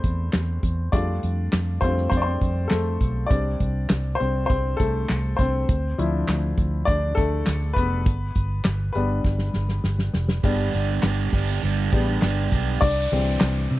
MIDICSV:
0, 0, Header, 1, 7, 480
1, 0, Start_track
1, 0, Tempo, 594648
1, 752, Time_signature, 4, 2, 24, 8
1, 11135, End_track
2, 0, Start_track
2, 0, Title_t, "Upright piano"
2, 0, Program_c, 0, 0
2, 0, Control_c, 0, 64, 127
2, 0, Note_on_c, 0, 57, 48
2, 0, Note_on_c, 0, 59, 61
2, 0, Note_on_c, 0, 60, 55
2, 0, Note_on_c, 0, 62, 63
2, 0, Note_on_c, 0, 71, 43
2, 0, Note_on_c, 0, 72, 84
2, 0, Note_on_c, 0, 74, 77
2, 474, Note_off_c, 0, 72, 0
2, 483, Note_off_c, 0, 60, 0
2, 718, Note_off_c, 0, 57, 0
2, 720, Note_off_c, 0, 71, 0
2, 744, Note_off_c, 0, 74, 0
2, 744, Note_on_c, 0, 74, 84
2, 752, Note_on_c, 0, 55, 47
2, 755, Note_on_c, 0, 57, 43
2, 762, Control_c, 0, 64, 0
2, 764, Note_off_c, 0, 62, 0
2, 764, Note_on_c, 0, 62, 69
2, 764, Note_on_c, 0, 65, 53
2, 767, Note_off_c, 0, 59, 0
2, 890, Control_c, 0, 64, 127
2, 1436, Note_off_c, 0, 74, 0
2, 1446, Note_off_c, 0, 62, 0
2, 1459, Note_on_c, 0, 72, 79
2, 1466, Note_off_c, 0, 55, 0
2, 1469, Note_off_c, 0, 57, 0
2, 1471, Note_off_c, 0, 65, 0
2, 1478, Note_on_c, 0, 55, 42
2, 1482, Note_on_c, 0, 57, 37
2, 1483, Note_on_c, 0, 65, 44
2, 1487, Note_on_c, 0, 60, 61
2, 1679, Note_off_c, 0, 72, 0
2, 1691, Note_off_c, 0, 55, 0
2, 1692, Note_on_c, 0, 72, 82
2, 1693, Note_off_c, 0, 57, 0
2, 1694, Note_off_c, 0, 65, 0
2, 1703, Note_off_c, 0, 60, 0
2, 1722, Note_on_c, 0, 60, 63
2, 1752, Note_on_c, 0, 74, 71
2, 1760, Note_off_c, 0, 72, 0
2, 1770, Note_off_c, 0, 60, 0
2, 1790, Note_on_c, 0, 72, 84
2, 1817, Note_off_c, 0, 74, 0
2, 1822, Note_on_c, 0, 60, 64
2, 2160, Note_on_c, 0, 69, 72
2, 2165, Note_off_c, 0, 60, 0
2, 2186, Note_off_c, 0, 72, 0
2, 2192, Note_on_c, 0, 57, 58
2, 2510, Note_off_c, 0, 69, 0
2, 2527, Note_off_c, 0, 57, 0
2, 2636, Note_on_c, 0, 74, 88
2, 2659, Note_on_c, 0, 55, 50
2, 2665, Note_on_c, 0, 60, 46
2, 2668, Note_on_c, 0, 62, 66
2, 2682, Control_c, 0, 64, 0
2, 2807, Control_c, 0, 64, 127
2, 3351, Note_on_c, 0, 72, 82
2, 3379, Note_off_c, 0, 60, 0
2, 3391, Note_on_c, 0, 60, 62
2, 3396, Note_off_c, 0, 74, 0
2, 3589, Note_off_c, 0, 72, 0
2, 3601, Note_on_c, 0, 72, 86
2, 3614, Note_off_c, 0, 60, 0
2, 3636, Note_on_c, 0, 60, 65
2, 3848, Note_on_c, 0, 69, 88
2, 3857, Note_off_c, 0, 60, 0
2, 3864, Note_off_c, 0, 72, 0
2, 3880, Note_on_c, 0, 57, 59
2, 4323, Note_off_c, 0, 57, 0
2, 4331, Note_on_c, 0, 72, 71
2, 4354, Note_off_c, 0, 69, 0
2, 4363, Note_on_c, 0, 60, 59
2, 4552, Note_off_c, 0, 55, 0
2, 4558, Note_off_c, 0, 62, 0
2, 4603, Control_c, 0, 64, 0
2, 4725, Control_c, 0, 64, 127
2, 4829, Note_on_c, 0, 53, 53
2, 4830, Note_on_c, 0, 62, 47
2, 4836, Note_on_c, 0, 64, 55
2, 5149, Note_off_c, 0, 53, 0
2, 5150, Note_off_c, 0, 62, 0
2, 5153, Note_off_c, 0, 64, 0
2, 5269, Note_off_c, 0, 72, 0
2, 5285, Note_off_c, 0, 60, 0
2, 5532, Note_on_c, 0, 74, 100
2, 5552, Note_on_c, 0, 62, 72
2, 5764, Note_off_c, 0, 74, 0
2, 5770, Note_on_c, 0, 69, 93
2, 5774, Note_off_c, 0, 62, 0
2, 5794, Note_on_c, 0, 57, 68
2, 6240, Note_off_c, 0, 57, 0
2, 6244, Note_on_c, 0, 71, 94
2, 6273, Note_on_c, 0, 59, 68
2, 6275, Note_off_c, 0, 69, 0
2, 6521, Control_c, 0, 64, 0
2, 6643, Control_c, 0, 64, 127
2, 7193, Note_off_c, 0, 71, 0
2, 7199, Note_off_c, 0, 59, 0
2, 7205, Note_on_c, 0, 71, 72
2, 7224, Note_on_c, 0, 55, 53
2, 7229, Note_on_c, 0, 59, 58
2, 7237, Note_on_c, 0, 62, 56
2, 7546, Note_off_c, 0, 55, 0
2, 7552, Note_off_c, 0, 62, 0
2, 8145, Note_off_c, 0, 71, 0
2, 8160, Note_off_c, 0, 59, 0
2, 8429, Note_on_c, 0, 55, 50
2, 8435, Note_on_c, 0, 59, 46
2, 8435, Note_on_c, 0, 62, 55
2, 8439, Control_c, 0, 64, 0
2, 8581, Control_c, 0, 64, 127
2, 8748, Note_off_c, 0, 55, 0
2, 8751, Note_off_c, 0, 59, 0
2, 8751, Note_off_c, 0, 62, 0
2, 9625, Note_on_c, 0, 55, 44
2, 9633, Note_on_c, 0, 59, 42
2, 9636, Note_on_c, 0, 62, 48
2, 9843, Note_off_c, 0, 55, 0
2, 9847, Note_off_c, 0, 59, 0
2, 9848, Note_off_c, 0, 62, 0
2, 10338, Note_on_c, 0, 74, 108
2, 10358, Control_c, 0, 64, 0
2, 10360, Note_on_c, 0, 62, 83
2, 10504, Control_c, 0, 64, 127
2, 10587, Note_on_c, 0, 52, 52
2, 10593, Note_on_c, 0, 55, 48
2, 10598, Note_on_c, 0, 60, 63
2, 11135, Note_off_c, 0, 52, 0
2, 11135, Note_off_c, 0, 55, 0
2, 11135, Note_off_c, 0, 60, 0
2, 11135, Note_off_c, 0, 62, 0
2, 11135, Note_off_c, 0, 74, 0
2, 11135, End_track
3, 0, Start_track
3, 0, Title_t, "Overdriven electric guitar"
3, 0, Program_c, 1, 29
3, 8422, Note_on_c, 1, 43, 79
3, 8426, Note_on_c, 1, 50, 75
3, 8430, Note_on_c, 1, 55, 80
3, 8433, Note_on_c, 1, 59, 79
3, 8435, Note_on_c, 1, 62, 83
3, 8438, Note_on_c, 1, 67, 88
3, 8656, Note_off_c, 1, 67, 0
3, 8664, Note_off_c, 1, 62, 0
3, 8665, Note_off_c, 1, 43, 0
3, 8666, Note_on_c, 1, 67, 51
3, 8667, Note_off_c, 1, 50, 0
3, 8669, Note_off_c, 1, 55, 0
3, 8671, Note_off_c, 1, 59, 0
3, 8674, Note_on_c, 1, 62, 51
3, 8679, Note_on_c, 1, 59, 49
3, 8686, Note_on_c, 1, 55, 43
3, 8899, Note_off_c, 1, 55, 0
3, 8907, Note_off_c, 1, 67, 0
3, 8908, Note_off_c, 1, 59, 0
3, 8909, Note_on_c, 1, 55, 58
3, 8911, Note_off_c, 1, 62, 0
3, 8918, Note_on_c, 1, 59, 64
3, 8922, Note_on_c, 1, 62, 57
3, 8929, Note_on_c, 1, 67, 67
3, 9135, Note_off_c, 1, 67, 0
3, 9145, Note_off_c, 1, 62, 0
3, 9145, Note_on_c, 1, 67, 61
3, 9149, Note_off_c, 1, 55, 0
3, 9149, Note_off_c, 1, 59, 0
3, 9155, Note_on_c, 1, 62, 50
3, 9159, Note_on_c, 1, 59, 52
3, 9166, Note_on_c, 1, 55, 44
3, 9382, Note_off_c, 1, 55, 0
3, 9383, Note_off_c, 1, 59, 0
3, 9384, Note_on_c, 1, 43, 78
3, 9387, Note_off_c, 1, 62, 0
3, 9387, Note_off_c, 1, 67, 0
3, 9388, Note_on_c, 1, 50, 75
3, 9392, Note_on_c, 1, 55, 89
3, 9393, Note_on_c, 1, 59, 88
3, 9397, Note_on_c, 1, 62, 84
3, 9399, Note_on_c, 1, 67, 90
3, 9610, Note_off_c, 1, 67, 0
3, 9615, Note_off_c, 1, 62, 0
3, 9619, Note_on_c, 1, 67, 55
3, 9623, Note_off_c, 1, 59, 0
3, 9625, Note_on_c, 1, 62, 57
3, 9626, Note_off_c, 1, 43, 0
3, 9628, Note_off_c, 1, 50, 0
3, 9630, Note_off_c, 1, 55, 0
3, 9633, Note_on_c, 1, 59, 54
3, 9640, Note_on_c, 1, 55, 50
3, 9849, Note_off_c, 1, 55, 0
3, 9857, Note_off_c, 1, 59, 0
3, 9859, Note_on_c, 1, 55, 56
3, 9864, Note_off_c, 1, 62, 0
3, 9864, Note_off_c, 1, 67, 0
3, 9867, Note_on_c, 1, 59, 71
3, 9873, Note_on_c, 1, 62, 70
3, 9881, Note_on_c, 1, 67, 64
3, 10094, Note_off_c, 1, 67, 0
3, 10101, Note_off_c, 1, 62, 0
3, 10103, Note_off_c, 1, 55, 0
3, 10104, Note_on_c, 1, 67, 56
3, 10107, Note_off_c, 1, 59, 0
3, 10111, Note_on_c, 1, 62, 54
3, 10116, Note_on_c, 1, 59, 50
3, 10123, Note_on_c, 1, 55, 44
3, 10346, Note_off_c, 1, 67, 0
3, 10349, Note_off_c, 1, 62, 0
3, 10352, Note_off_c, 1, 59, 0
3, 10355, Note_off_c, 1, 55, 0
3, 11135, End_track
4, 0, Start_track
4, 0, Title_t, "Fingered electric bass"
4, 0, Program_c, 2, 33
4, 33, Note_on_c, 2, 40, 85
4, 230, Note_off_c, 2, 40, 0
4, 276, Note_on_c, 2, 40, 78
4, 471, Note_off_c, 2, 40, 0
4, 513, Note_on_c, 2, 40, 77
4, 709, Note_off_c, 2, 40, 0
4, 754, Note_on_c, 2, 41, 76
4, 950, Note_off_c, 2, 41, 0
4, 997, Note_on_c, 2, 41, 84
4, 1192, Note_off_c, 2, 41, 0
4, 1236, Note_on_c, 2, 41, 92
4, 1431, Note_off_c, 2, 41, 0
4, 1468, Note_on_c, 2, 41, 92
4, 1667, Note_off_c, 2, 41, 0
4, 1709, Note_on_c, 2, 41, 86
4, 1907, Note_off_c, 2, 41, 0
4, 1951, Note_on_c, 2, 41, 86
4, 2148, Note_off_c, 2, 41, 0
4, 2196, Note_on_c, 2, 41, 81
4, 2391, Note_off_c, 2, 41, 0
4, 2430, Note_on_c, 2, 35, 72
4, 2628, Note_off_c, 2, 35, 0
4, 2671, Note_on_c, 2, 36, 91
4, 2868, Note_off_c, 2, 36, 0
4, 2909, Note_on_c, 2, 36, 85
4, 3107, Note_off_c, 2, 36, 0
4, 3156, Note_on_c, 2, 36, 90
4, 3351, Note_off_c, 2, 36, 0
4, 3399, Note_on_c, 2, 36, 90
4, 3592, Note_off_c, 2, 36, 0
4, 3632, Note_on_c, 2, 36, 79
4, 3828, Note_off_c, 2, 36, 0
4, 3874, Note_on_c, 2, 36, 80
4, 4070, Note_off_c, 2, 36, 0
4, 4119, Note_on_c, 2, 36, 90
4, 4312, Note_off_c, 2, 36, 0
4, 4354, Note_on_c, 2, 36, 83
4, 4550, Note_off_c, 2, 36, 0
4, 4594, Note_on_c, 2, 38, 89
4, 4790, Note_off_c, 2, 38, 0
4, 4833, Note_on_c, 2, 38, 94
4, 5029, Note_off_c, 2, 38, 0
4, 5070, Note_on_c, 2, 38, 95
4, 5267, Note_off_c, 2, 38, 0
4, 5313, Note_on_c, 2, 38, 78
4, 5509, Note_off_c, 2, 38, 0
4, 5555, Note_on_c, 2, 38, 88
4, 5750, Note_off_c, 2, 38, 0
4, 5795, Note_on_c, 2, 38, 84
4, 5990, Note_off_c, 2, 38, 0
4, 6036, Note_on_c, 2, 38, 90
4, 6231, Note_off_c, 2, 38, 0
4, 6269, Note_on_c, 2, 29, 85
4, 6508, Note_off_c, 2, 29, 0
4, 6508, Note_on_c, 2, 31, 99
4, 6706, Note_off_c, 2, 31, 0
4, 6749, Note_on_c, 2, 31, 92
4, 6946, Note_off_c, 2, 31, 0
4, 6991, Note_on_c, 2, 31, 96
4, 7187, Note_off_c, 2, 31, 0
4, 7229, Note_on_c, 2, 31, 84
4, 7426, Note_off_c, 2, 31, 0
4, 7466, Note_on_c, 2, 31, 89
4, 7665, Note_off_c, 2, 31, 0
4, 7708, Note_on_c, 2, 31, 91
4, 7905, Note_off_c, 2, 31, 0
4, 7945, Note_on_c, 2, 31, 83
4, 8143, Note_off_c, 2, 31, 0
4, 8190, Note_on_c, 2, 29, 80
4, 8386, Note_off_c, 2, 29, 0
4, 8426, Note_on_c, 2, 31, 90
4, 8624, Note_off_c, 2, 31, 0
4, 8672, Note_on_c, 2, 31, 90
4, 8867, Note_off_c, 2, 31, 0
4, 8908, Note_on_c, 2, 31, 89
4, 9105, Note_off_c, 2, 31, 0
4, 9147, Note_on_c, 2, 31, 85
4, 9345, Note_off_c, 2, 31, 0
4, 9391, Note_on_c, 2, 31, 88
4, 9587, Note_off_c, 2, 31, 0
4, 9629, Note_on_c, 2, 33, 88
4, 9825, Note_off_c, 2, 33, 0
4, 9870, Note_on_c, 2, 31, 91
4, 10066, Note_off_c, 2, 31, 0
4, 10108, Note_on_c, 2, 35, 89
4, 10305, Note_off_c, 2, 35, 0
4, 10351, Note_on_c, 2, 36, 96
4, 10546, Note_off_c, 2, 36, 0
4, 10589, Note_on_c, 2, 36, 91
4, 10785, Note_off_c, 2, 36, 0
4, 10833, Note_on_c, 2, 36, 98
4, 11027, Note_off_c, 2, 36, 0
4, 11067, Note_on_c, 2, 48, 93
4, 11135, Note_off_c, 2, 48, 0
4, 11135, End_track
5, 0, Start_track
5, 0, Title_t, "Downlifter"
5, 0, Program_c, 3, 103
5, 10348, Note_on_c, 3, 60, 89
5, 11135, Note_off_c, 3, 60, 0
5, 11135, End_track
6, 0, Start_track
6, 0, Title_t, "Noise sweep"
6, 0, Program_c, 4, 103
6, 8426, Note_on_c, 4, 60, 79
6, 10346, Note_off_c, 4, 60, 0
6, 11135, End_track
7, 0, Start_track
7, 0, Title_t, "Drums"
7, 32, Note_on_c, 9, 36, 72
7, 34, Note_on_c, 9, 42, 61
7, 112, Note_off_c, 9, 36, 0
7, 114, Note_off_c, 9, 42, 0
7, 267, Note_on_c, 9, 39, 69
7, 269, Note_on_c, 9, 38, 86
7, 273, Note_on_c, 9, 42, 68
7, 347, Note_off_c, 9, 39, 0
7, 349, Note_off_c, 9, 38, 0
7, 354, Note_off_c, 9, 42, 0
7, 509, Note_on_c, 9, 36, 66
7, 517, Note_on_c, 9, 42, 64
7, 590, Note_off_c, 9, 36, 0
7, 598, Note_off_c, 9, 42, 0
7, 751, Note_on_c, 9, 36, 97
7, 753, Note_on_c, 9, 42, 83
7, 831, Note_off_c, 9, 36, 0
7, 834, Note_off_c, 9, 42, 0
7, 991, Note_on_c, 9, 42, 68
7, 1072, Note_off_c, 9, 42, 0
7, 1230, Note_on_c, 9, 42, 79
7, 1231, Note_on_c, 9, 39, 80
7, 1233, Note_on_c, 9, 38, 97
7, 1311, Note_off_c, 9, 42, 0
7, 1312, Note_off_c, 9, 39, 0
7, 1314, Note_off_c, 9, 38, 0
7, 1467, Note_on_c, 9, 36, 69
7, 1475, Note_on_c, 9, 42, 60
7, 1547, Note_off_c, 9, 36, 0
7, 1556, Note_off_c, 9, 42, 0
7, 1593, Note_on_c, 9, 38, 28
7, 1674, Note_off_c, 9, 38, 0
7, 1707, Note_on_c, 9, 42, 69
7, 1708, Note_on_c, 9, 36, 77
7, 1787, Note_off_c, 9, 42, 0
7, 1789, Note_off_c, 9, 36, 0
7, 1947, Note_on_c, 9, 42, 57
7, 1949, Note_on_c, 9, 36, 69
7, 2027, Note_off_c, 9, 42, 0
7, 2029, Note_off_c, 9, 36, 0
7, 2182, Note_on_c, 9, 39, 71
7, 2184, Note_on_c, 9, 38, 86
7, 2188, Note_on_c, 9, 42, 67
7, 2263, Note_off_c, 9, 39, 0
7, 2265, Note_off_c, 9, 38, 0
7, 2269, Note_off_c, 9, 42, 0
7, 2428, Note_on_c, 9, 36, 68
7, 2434, Note_on_c, 9, 42, 63
7, 2508, Note_off_c, 9, 36, 0
7, 2514, Note_off_c, 9, 42, 0
7, 2667, Note_on_c, 9, 42, 85
7, 2669, Note_on_c, 9, 36, 101
7, 2748, Note_off_c, 9, 42, 0
7, 2749, Note_off_c, 9, 36, 0
7, 2908, Note_on_c, 9, 42, 60
7, 2909, Note_on_c, 9, 36, 68
7, 2988, Note_off_c, 9, 42, 0
7, 2990, Note_off_c, 9, 36, 0
7, 3144, Note_on_c, 9, 42, 85
7, 3145, Note_on_c, 9, 39, 83
7, 3147, Note_on_c, 9, 38, 104
7, 3225, Note_off_c, 9, 39, 0
7, 3225, Note_off_c, 9, 42, 0
7, 3227, Note_off_c, 9, 38, 0
7, 3393, Note_on_c, 9, 42, 60
7, 3473, Note_off_c, 9, 42, 0
7, 3628, Note_on_c, 9, 42, 67
7, 3630, Note_on_c, 9, 36, 80
7, 3709, Note_off_c, 9, 42, 0
7, 3711, Note_off_c, 9, 36, 0
7, 3873, Note_on_c, 9, 36, 75
7, 3874, Note_on_c, 9, 42, 62
7, 3954, Note_off_c, 9, 36, 0
7, 3955, Note_off_c, 9, 42, 0
7, 4109, Note_on_c, 9, 39, 75
7, 4111, Note_on_c, 9, 38, 92
7, 4116, Note_on_c, 9, 42, 68
7, 4190, Note_off_c, 9, 39, 0
7, 4192, Note_off_c, 9, 38, 0
7, 4196, Note_off_c, 9, 42, 0
7, 4350, Note_on_c, 9, 36, 72
7, 4356, Note_on_c, 9, 42, 65
7, 4431, Note_off_c, 9, 36, 0
7, 4437, Note_off_c, 9, 42, 0
7, 4593, Note_on_c, 9, 36, 104
7, 4594, Note_on_c, 9, 42, 87
7, 4673, Note_off_c, 9, 36, 0
7, 4674, Note_off_c, 9, 42, 0
7, 4834, Note_on_c, 9, 42, 70
7, 4914, Note_off_c, 9, 42, 0
7, 5070, Note_on_c, 9, 42, 84
7, 5071, Note_on_c, 9, 39, 90
7, 5073, Note_on_c, 9, 38, 98
7, 5151, Note_off_c, 9, 42, 0
7, 5152, Note_off_c, 9, 39, 0
7, 5154, Note_off_c, 9, 38, 0
7, 5308, Note_on_c, 9, 36, 73
7, 5313, Note_on_c, 9, 42, 58
7, 5389, Note_off_c, 9, 36, 0
7, 5394, Note_off_c, 9, 42, 0
7, 5550, Note_on_c, 9, 42, 68
7, 5551, Note_on_c, 9, 36, 76
7, 5631, Note_off_c, 9, 36, 0
7, 5631, Note_off_c, 9, 42, 0
7, 5791, Note_on_c, 9, 36, 75
7, 5791, Note_on_c, 9, 42, 64
7, 5872, Note_off_c, 9, 36, 0
7, 5872, Note_off_c, 9, 42, 0
7, 6025, Note_on_c, 9, 39, 74
7, 6027, Note_on_c, 9, 38, 86
7, 6031, Note_on_c, 9, 42, 69
7, 6106, Note_off_c, 9, 39, 0
7, 6108, Note_off_c, 9, 38, 0
7, 6112, Note_off_c, 9, 42, 0
7, 6268, Note_on_c, 9, 36, 73
7, 6275, Note_on_c, 9, 42, 65
7, 6348, Note_off_c, 9, 36, 0
7, 6356, Note_off_c, 9, 42, 0
7, 6508, Note_on_c, 9, 36, 107
7, 6509, Note_on_c, 9, 42, 83
7, 6588, Note_off_c, 9, 36, 0
7, 6589, Note_off_c, 9, 42, 0
7, 6740, Note_on_c, 9, 42, 67
7, 6746, Note_on_c, 9, 36, 74
7, 6820, Note_off_c, 9, 42, 0
7, 6826, Note_off_c, 9, 36, 0
7, 6977, Note_on_c, 9, 42, 84
7, 6978, Note_on_c, 9, 39, 85
7, 6980, Note_on_c, 9, 38, 108
7, 7058, Note_off_c, 9, 42, 0
7, 7059, Note_off_c, 9, 39, 0
7, 7061, Note_off_c, 9, 38, 0
7, 7222, Note_on_c, 9, 42, 55
7, 7303, Note_off_c, 9, 42, 0
7, 7463, Note_on_c, 9, 36, 76
7, 7463, Note_on_c, 9, 38, 52
7, 7544, Note_off_c, 9, 36, 0
7, 7544, Note_off_c, 9, 38, 0
7, 7576, Note_on_c, 9, 38, 49
7, 7657, Note_off_c, 9, 38, 0
7, 7696, Note_on_c, 9, 38, 59
7, 7777, Note_off_c, 9, 38, 0
7, 7819, Note_on_c, 9, 38, 60
7, 7900, Note_off_c, 9, 38, 0
7, 7941, Note_on_c, 9, 38, 74
7, 8022, Note_off_c, 9, 38, 0
7, 8061, Note_on_c, 9, 38, 67
7, 8142, Note_off_c, 9, 38, 0
7, 8181, Note_on_c, 9, 38, 89
7, 8262, Note_off_c, 9, 38, 0
7, 8301, Note_on_c, 9, 38, 80
7, 8382, Note_off_c, 9, 38, 0
7, 8425, Note_on_c, 9, 36, 101
7, 8425, Note_on_c, 9, 49, 80
7, 8506, Note_off_c, 9, 36, 0
7, 8506, Note_off_c, 9, 49, 0
7, 8663, Note_on_c, 9, 42, 68
7, 8744, Note_off_c, 9, 42, 0
7, 8900, Note_on_c, 9, 42, 83
7, 8901, Note_on_c, 9, 39, 86
7, 8903, Note_on_c, 9, 38, 102
7, 8981, Note_off_c, 9, 42, 0
7, 8982, Note_off_c, 9, 39, 0
7, 8984, Note_off_c, 9, 38, 0
7, 9144, Note_on_c, 9, 36, 77
7, 9149, Note_on_c, 9, 42, 63
7, 9225, Note_off_c, 9, 36, 0
7, 9230, Note_off_c, 9, 42, 0
7, 9385, Note_on_c, 9, 42, 71
7, 9465, Note_off_c, 9, 42, 0
7, 9626, Note_on_c, 9, 42, 61
7, 9627, Note_on_c, 9, 36, 84
7, 9707, Note_off_c, 9, 42, 0
7, 9708, Note_off_c, 9, 36, 0
7, 9863, Note_on_c, 9, 39, 77
7, 9865, Note_on_c, 9, 38, 98
7, 9869, Note_on_c, 9, 42, 73
7, 9943, Note_off_c, 9, 39, 0
7, 9945, Note_off_c, 9, 38, 0
7, 9950, Note_off_c, 9, 42, 0
7, 10107, Note_on_c, 9, 36, 69
7, 10115, Note_on_c, 9, 42, 66
7, 10188, Note_off_c, 9, 36, 0
7, 10196, Note_off_c, 9, 42, 0
7, 10347, Note_on_c, 9, 36, 115
7, 10349, Note_on_c, 9, 49, 101
7, 10428, Note_off_c, 9, 36, 0
7, 10430, Note_off_c, 9, 49, 0
7, 10587, Note_on_c, 9, 51, 59
7, 10668, Note_off_c, 9, 51, 0
7, 10702, Note_on_c, 9, 51, 50
7, 10783, Note_off_c, 9, 51, 0
7, 10820, Note_on_c, 9, 39, 101
7, 10820, Note_on_c, 9, 51, 81
7, 10822, Note_on_c, 9, 38, 119
7, 10900, Note_off_c, 9, 51, 0
7, 10901, Note_off_c, 9, 39, 0
7, 10903, Note_off_c, 9, 38, 0
7, 10944, Note_on_c, 9, 51, 33
7, 11025, Note_off_c, 9, 51, 0
7, 11067, Note_on_c, 9, 51, 58
7, 11135, Note_off_c, 9, 51, 0
7, 11135, End_track
0, 0, End_of_file